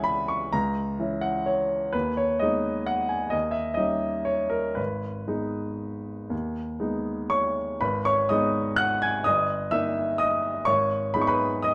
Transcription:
0.00 0.53 C#2 medium
0.00 0.49 E3 soft
0.00 0.49 C#4 soft
0.00 0.49 G#4 soft
0.00 0.56 E5 medium
0.00 0.56 F#5 medium
0.00 0.56 G#5 medium
0.00 0.29 B5 medium
0.28 0.53 C#6 medium
0.53 0.97 C#2 medium
0.53 1.22 A#5 medium
0.99 1.89 E3 soft
0.99 1.90 C#4 soft
0.99 1.90 E4 soft
1.21 1.46 F#5 medium
1.46 1.93 C#5 medium
1.93 2.39 D#2 soft
1.93 2.16 B4 medium
2.17 2.40 C#5 medium
2.39 3.31 G#3 soft
2.39 3.31 B3 soft
2.39 3.31 D#4 soft
2.39 2.87 D#5 medium
2.86 3.11 F#5 medium
3.09 3.33 G#5 medium
3.30 3.77 D#2 soft
3.30 3.54 D#5 medium
3.51 3.77 E5 medium
3.74 4.73 G3 soft
3.74 4.73 C#4 soft
3.74 4.73 D#4 soft
3.74 4.26 D#5 medium
4.25 4.52 C#5 medium
4.50 4.76 A#4 medium
4.75 5.27 G#1 soft
4.75 7.56 B4 medium
5.28 6.27 G#3 soft
5.28 6.27 B3 soft
5.28 6.27 D#4 soft
6.30 6.79 D#2 soft
6.80 7.77 G#3 soft
6.80 7.77 B3 soft
6.80 7.78 D#4 soft
7.30 7.77 C#5 medium
7.30 7.81 C#6 medium
7.81 8.28 G#1 medium
7.81 8.03 B4 medium
7.81 8.05 B5 medium
8.05 8.28 C#5 medium
8.05 8.29 C#6 medium
8.29 9.21 G#3 soft
8.29 9.22 B3 soft
8.29 9.22 D#4 soft
8.29 8.75 D#5 medium
8.29 8.78 D#6 medium
8.76 9.00 F#5 medium
8.76 9.01 F#6 medium
9.02 9.24 G#5 medium
9.02 9.25 G#6 medium
9.24 9.70 G1 medium
9.24 9.68 D#5 medium
9.24 9.71 D#6 medium
9.71 10.65 A#3 soft
9.71 10.65 D#4 soft
9.71 10.17 E5 medium
9.71 10.20 E6 medium
10.18 10.65 D#5 medium
10.18 10.67 D#6 medium
10.65 11.13 G#1 medium
10.65 11.11 C#5 medium
10.65 11.14 C#6 medium
11.14 11.74 G#3 soft
11.14 11.74 B3 soft
11.14 11.74 D#4 soft
11.14 11.22 B5 medium
11.21 11.29 C#6 medium
11.27 11.61 B4 medium
11.27 11.63 B5 medium
11.63 11.74 D#5 medium
11.63 11.74 D#6 medium

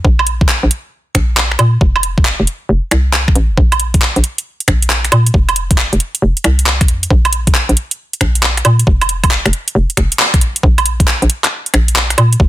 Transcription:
0.05 0.58 A#1 medium
0.05 kick loud
0.19 high woodblock medium
0.27 closed hi-hat loud
0.41 kick loud
0.49 clap loud
0.63 0.69 A#1 medium
0.71 closed hi-hat medium
1.15 1.56 A#1 medium
1.15 finger snap medium
1.15 kick medium
1.15 closed hi-hat loud
1.37 clap loud
1.51 finger snap soft
1.59 1.77 A#2 medium
1.59 closed hi-hat medium
1.59 high woodblock medium
1.81 2.34 F1 loud
1.81 kick loud
1.96 high woodblock medium
2.03 closed hi-hat loud
2.18 kick loud
2.25 clap loud
2.40 2.45 F1 medium
2.47 closed hi-hat medium
2.69 2.80 F1 loud
2.91 3.32 C2 medium
2.91 finger snap medium
2.91 closed hi-hat loud
3.13 clap loud
3.28 finger snap soft
3.28 kick loud
3.35 3.52 A1 medium
3.35 closed hi-hat medium
3.50 3.56 F1 medium
3.58 4.10 A#1 medium
3.58 kick loud
3.72 closed hi-hat medium
3.72 high woodblock medium
3.80 closed hi-hat loud
3.94 kick loud
3.94 closed hi-hat medium
4.02 clap loud
4.16 4.22 A#1 medium
4.16 closed hi-hat soft
4.24 closed hi-hat medium
4.38 closed hi-hat medium
4.60 closed hi-hat soft
4.68 5.09 A#1 medium
4.68 finger snap medium
4.68 kick medium
4.68 closed hi-hat loud
4.82 closed hi-hat medium
4.90 clap loud
5.05 finger snap soft
5.05 closed hi-hat soft
5.12 5.30 A#2 medium
5.12 closed hi-hat medium
5.12 high woodblock medium
5.26 closed hi-hat medium
5.34 5.87 F1 loud
5.34 kick loud
5.49 closed hi-hat medium
5.49 high woodblock medium
5.56 closed hi-hat loud
5.71 kick loud
5.71 closed hi-hat medium
5.78 clap loud
5.93 5.98 F1 medium
5.93 closed hi-hat soft
6.00 closed hi-hat medium
6.15 closed hi-hat medium
6.22 6.33 F1 loud
6.37 closed hi-hat soft
6.44 6.90 C2 loud
6.44 finger snap medium
6.44 closed hi-hat loud
6.59 closed hi-hat medium
6.66 clap loud
6.81 finger snap soft
6.81 kick loud
6.81 closed hi-hat medium
6.88 7.07 F2 medium
6.88 closed hi-hat medium
7.03 closed hi-hat medium
7.10 7.63 A#1 loud
7.10 kick loud
7.25 closed hi-hat medium
7.25 high woodblock medium
7.33 closed hi-hat loud
7.47 kick loud
7.47 closed hi-hat medium
7.55 clap loud
7.69 7.75 A#1 medium
7.69 closed hi-hat soft
7.77 closed hi-hat medium
7.91 closed hi-hat medium
8.13 closed hi-hat soft
8.21 8.62 A#1 medium
8.21 finger snap medium
8.21 kick medium
8.21 closed hi-hat loud
8.35 closed hi-hat medium
8.43 clap loud
8.57 finger snap soft
8.57 closed hi-hat medium
8.65 8.83 A#2 medium
8.65 closed hi-hat medium
8.65 high woodblock medium
8.79 closed hi-hat medium
8.87 9.40 F1 loud
8.87 kick loud
9.01 closed hi-hat medium
9.01 high woodblock medium
9.09 closed hi-hat loud
9.24 kick medium
9.24 closed hi-hat medium
9.24 high woodblock medium
9.31 clap loud
9.46 9.51 F1 medium
9.46 finger snap medium
9.46 closed hi-hat soft
9.53 closed hi-hat medium
9.68 closed hi-hat medium
9.75 9.86 F1 loud
9.90 closed hi-hat soft
9.97 10.08 F1 loud
9.97 finger snap medium
9.97 kick medium
9.97 closed hi-hat loud
10.12 closed hi-hat medium
10.19 clap loud
10.34 finger snap soft
10.34 kick loud
10.34 closed hi-hat medium
10.41 closed hi-hat medium
10.56 closed hi-hat medium
10.63 11.16 A#1 loud
10.63 kick loud
10.78 closed hi-hat medium
10.78 high woodblock medium
10.86 closed hi-hat loud
11.00 kick loud
11.00 closed hi-hat medium
11.08 clap loud
11.22 11.28 A#1 medium
11.22 closed hi-hat soft
11.30 closed hi-hat loud
11.44 clap medium
11.44 closed hi-hat medium
11.66 closed hi-hat soft
11.74 12.15 A#1 medium
11.74 finger snap medium
11.74 closed hi-hat loud
11.88 closed hi-hat medium
11.96 clap loud
12.10 finger snap soft
12.10 closed hi-hat soft
12.18 12.36 A#2 medium
12.18 closed hi-hat loud
12.18 high woodblock medium
12.33 closed hi-hat medium
12.40 12.48 F1 loud
12.40 kick loud

